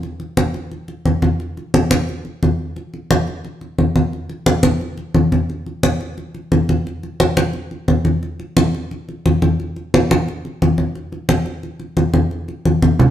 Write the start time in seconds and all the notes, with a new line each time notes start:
0.03 high conga
0.20 high conga
0.37 high conga
0.54 high conga
0.72 high conga
0.88 high conga
1.05 high conga
1.22 high conga
1.40 high conga
1.57 high conga
1.74 high conga
1.91 high conga
2.09 high conga
2.25 high conga
2.43 high conga
2.76 high conga
2.94 high conga
3.11 high conga
3.28 high conga
3.45 high conga
3.61 high conga
3.78 high conga
3.96 high conga
4.13 high conga
4.29 high conga
4.46 high conga
4.63 high conga
4.81 high conga
4.98 high conga
5.15 high conga
5.32 high conga
5.50 high conga
5.66 high conga
5.83 high conga
6.01 high conga
6.18 high conga
6.35 high conga
6.52 high conga
6.69 high conga
6.87 high conga
7.03 high conga
7.20 high conga
7.37 high conga
7.53 high conga
7.71 high conga
7.88 high conga
8.05 high conga
8.23 high conga
8.40 high conga
8.57 high conga
8.75 high conga
8.91 high conga
9.09 high conga
9.26 high conga
9.42 high conga
9.60 high conga
9.76 high conga
9.94 high conga
10.11 high conga
10.28 high conga
10.45 high conga
10.62 high conga
10.78 high conga
10.95 high conga
11.12 high conga
11.29 high conga
11.46 high conga
11.63 high conga
11.80 high conga
11.97 high conga
12.14 high conga
12.31 high conga
12.48 high conga
12.65 high conga
12.82 high conga
12.99 low conga